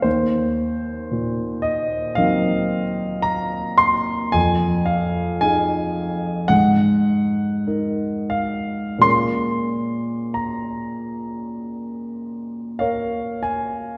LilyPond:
\new Staff \with { instrumentName = "Grand piano" } { \time 4/4 \key bes \minor \tempo 4 = 54 << { c''4. ees''8 f''4 bes''8 c'''8 | aes''8 f''8 aes''4 ges''4. f''8 | c'''4 bes''2 <bes' des'' f''>8 aes''8 | } \\ { ees,4 bes,4 <ges c' ees' bes'>2 | f,4 <ees' aes'>4 aes,4 <ees' bes'>4 | <bes, aes bes des' bes'>1 | } >> }